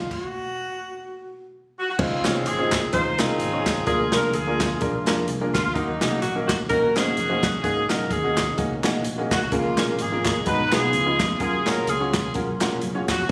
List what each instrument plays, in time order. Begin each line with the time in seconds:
Already playing: tenor saxophone F4
0.11 tenor saxophone F#4, kick, crash
1.79 saxophone section F#4
1.90 saxophone section F#4
1.99 fingered electric bass C#2, upright piano C#3 C#4 D#4 F4 G#4 C5, tonewheel organ C#3 D#3 G#3 C4 F4, saxophone section G#3 C4 F4, kick, crash
2.25 fingered electric bass C2, upright piano C#4 D#4 F4 G#4 C#5, saxophone section F4, snare, clap, closed hi-hat
2.46 fingered electric bass G#1, saxophone section G#4, closed hi-hat
2.59 upright piano C#4 D#4 F4 G#4 C5
2.72 saxophone section G#4, kick, snare, clap, closed hi-hat
2.93 fingered electric bass D#2, upright piano C#4 D#4 F4 G#4 C5, saxophone section D#4 F4 C5, kick, closed hi-hat
3.18 fingered electric bass C2, saxophone section C4 F4 G#4, upright piano C#4 D#4 F4 G#4 A#4, snare, clap, closed hi-hat
3.40 fingered electric bass G#1, closed hi-hat
3.53 upright piano C#4 D#4 F4 G#4 C#5
3.66 kick, snare, clap, closed hi-hat
3.87 fingered electric bass D2, upright piano D3 A#3 D4 F4 G#4 A#4, tonewheel organ F3 G#3 A#3 D4 G#4, saxophone section F4 G#4, kick, closed hi-hat
4.12 fingered electric bass C2, upright piano A#3 D4 F4 G#4 A#4, saxophone section A#4, snare, clap, closed hi-hat
4.33 fingered electric bass D2, saxophone section F4 G#4, closed hi-hat
4.47 upright piano A#3 D4 F4 G#4 A#4
4.60 kick, snare, clap, closed hi-hat
4.81 fingered electric bass A#1, upright piano A#3 D4 F4 G#4 A#4, kick, closed hi-hat
5.06 fingered electric bass F1, upright piano A#3 D4 F4 G#4 A#4, snare, clap, closed hi-hat
5.28 fingered electric bass C2, closed hi-hat
5.41 upright piano A#3 D4 F4 G#4 A#4
5.54 fingered electric bass D2, saxophone section F4, kick, snare, clap, closed hi-hat
5.65 saxophone section F4
5.75 fingered electric bass D#2, upright piano D#3 A#3 C#4 D#4 F#4 A#4, tonewheel organ D#3 F#3 A#3 C#4 F#4, saxophone section F#3 A#3 D#4, kick, closed hi-hat
6.01 fingered electric bass C2, upright piano A#3 C#4 D#4 F#4 G#4, saxophone section D#4, snare, clap, closed hi-hat
6.22 fingered electric bass A#1, saxophone section F#4, closed hi-hat
6.35 upright piano A#3 C#4 D#4 F#4 A#4
6.48 saxophone section F#4, kick, snare, clap, closed hi-hat
6.69 fingered electric bass A#1, upright piano A#3 C#4 D#4 F#4 A#4, saxophone section C#4 F#4 A#4, kick, closed hi-hat
6.94 upright piano A#3 C#4 D#4 F#4 C5, saxophone section C#4 G#4, snare, clap, closed hi-hat
7.17 fingered electric bass F1, closed hi-hat
7.29 upright piano A#3 C#4 D#4 F#4 C5
7.43 fingered electric bass F#1, kick, snare, clap, closed hi-hat
7.63 fingered electric bass G#1, upright piano G#2 A#3 C#4 D#4 F#4 G#4, tonewheel organ D#3 G#3 A#3 C4 F#4, saxophone section C#4 D#4 G#4, kick, closed hi-hat
7.69 tonewheel organ C#4
7.89 fingered electric bass F#1, upright piano A#3 C#4 D#4 F#4 A#4, saxophone section A#4, snare, clap, closed hi-hat
8.11 fingered electric bass D#2, saxophone section C#4 D#4 G#4, kick, closed hi-hat
8.24 upright piano A#3 C#4 D#4 F#4 G#4
8.37 kick, snare, clap, closed hi-hat
8.57 fingered electric bass C#2, upright piano A#3 C#4 D#4 F#4 G#4, kick, closed hi-hat
8.83 fingered electric bass A#1, upright piano A#3 C#4 D#4 F#4 G#4, snare, clap, closed hi-hat
9.04 fingered electric bass A#1, closed hi-hat
9.18 upright piano A#3 C#4 D#4 F#4 G#4
9.31 fingered electric bass C2, saxophone section F#4, kick, snare, clap, closed hi-hat
9.42 saxophone section F#4
9.52 fingered electric bass C#2, upright piano C#3 A#3 C#4 F4 G#4 A#4, tonewheel organ F3 G#3 A#3 C#4 G#4, saxophone section G#3 A#3 F4, kick, closed hi-hat
9.78 fingered electric bass A#1, upright piano A#3 C#4 F4 G#4 A#4, saxophone section F4, snare, clap, closed hi-hat
9.99 fingered electric bass G#1, saxophone section G#4, closed hi-hat
10.12 upright piano A#3 C#4 F4 G#4 A#4
10.25 saxophone section G#4, kick, snare, clap, closed hi-hat
10.46 fingered electric bass G#1, upright piano G#2 B3 D#4 F#4 G#4 B4, tonewheel organ F#3 G#3 A#3 D#4 G#4, saxophone section D#4 F#4 B4, kick, closed hi-hat
10.53 tonewheel organ B3
10.72 fingered electric bass B1, upright piano B3 D#4 F#4 G#4 B4, saxophone section B3 F4 G#4, snare, clap, closed hi-hat
10.92 fingered electric bass C#2, upright piano C#3, tonewheel organ F3 B3 C#4 D#4 G#4, closed hi-hat
11.06 upright piano C#4 D#4 F4 G#4 B4
11.19 fingered electric bass F1, kick, snare, clap, closed hi-hat
11.40 fingered electric bass F#1, tonewheel organ F#3 A#3 C#4 F4 G#4, upright piano C#4 F4 F#4 G#4 A#4, saxophone section C#4 F4 G#4, kick, closed hi-hat
11.66 fingered electric bass A#1, upright piano C#4 F4 F#4 G#4 C#5, saxophone section A#4, snare, clap, closed hi-hat
11.87 fingered electric bass C#2, saxophone section C#4 F4 G#4, closed hi-hat
12.00 upright piano C#4 F4 F#4 G#4 C#5
12.14 kick, snare, clap, closed hi-hat
12.34 fingered electric bass F#1, upright piano C#4 F4 F#4 G#4 A#4, kick, closed hi-hat
12.60 fingered electric bass A#1, upright piano C#4 F4 F#4 G#4 A#4, snare, clap, closed hi-hat
12.81 fingered electric bass F#1, closed hi-hat
12.94 upright piano C#4 F4 F#4 G#4 C#5
13.08 fingered electric bass F1, saxophone section F#4, kick, snare, clap, closed hi-hat
13.21 saxophone section F#4